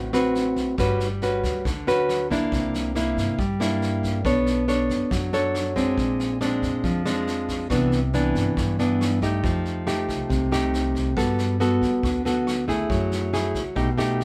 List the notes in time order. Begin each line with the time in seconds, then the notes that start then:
Already playing: A1 A2
0.13 C4 F#4 B4, cross-stick, snare
0.35 snare
0.56 kick, snare
0.78 G1 G3 C#4 F#4 B4, kick, cross-stick, snare
1.00 snare
1.22 C#4 F#4 B4, snare
1.43 D2, kick, snare
1.65 D2 D3, kick, cross-stick, snare
1.87 C#4 F#4 B4, snare
2.09 cross-stick, snare
2.30 A#3 D4 E4, kick, snare
2.52 C2 C3, kick, snare
2.74 snare
2.95 A#3 D4 E4, cross-stick, snare
3.17 G2, kick, snare
3.38 G2 G3, kick, snare
3.60 A#3 D4 E4, cross-stick, snare
3.82 snare
4.03 kick, snare
4.25 B1 B3 D4 A4 C#5, kick, cross-stick, snare
4.46 snare
4.68 D4 A4 C#5, snare
4.89 F#2, kick, snare
5.11 F#2 F#3, kick, cross-stick, snare
5.33 D4 A4 C#5, snare
5.55 cross-stick, snare
5.76 G#3 C4 D4, kick, snare
5.97 A#1 A#2, kick, snare
6.20 snare
6.41 G#3 C4 D4, cross-stick, snare
6.62 F2, kick, snare
6.84 F2 F3, kick, snare
7.06 G#3 C4 D4, cross-stick, snare
7.27 snare
7.49 kick, snare
7.70 C2 C3 E3 B3 D4, kick, cross-stick, snare
7.92 snare
8.13 E3 B3 D4, snare
8.35 G2, kick, snare
8.57 G2, kick, cross-stick, snare
8.79 E3 B3 D4, snare
9.01 cross-stick, snare
9.22 A3 D#4 G4, kick, snare
9.44 F2 F3, kick, snare
9.65 snare
9.87 A3 D#4 G4, cross-stick, snare
10.08 C2, kick, snare
10.30 C2 C3, kick, snare
10.52 A3 D#4 G4, cross-stick, snare
10.74 snare
10.95 kick, snare
11.17 G2 G3 B3 F#4 A4, kick, cross-stick, snare
11.38 snare
11.60 B3 F#4 A4, snare
11.82 D2, kick, snare
12.03 D2 D3, kick, cross-stick, snare
12.25 B3 F#4 A4, snare
12.47 cross-stick, snare
12.68 A3 E4 G#4, kick, snare
12.90 F#2 F#3, kick, snare
13.12 snare
13.33 A3 E4 G#4, cross-stick, snare
13.55 C#2, kick, snare
13.76 B1 B2 A3 D#4 G4, kick, snare
13.98 A3 D#4 G4, cross-stick, snare
14.21 snare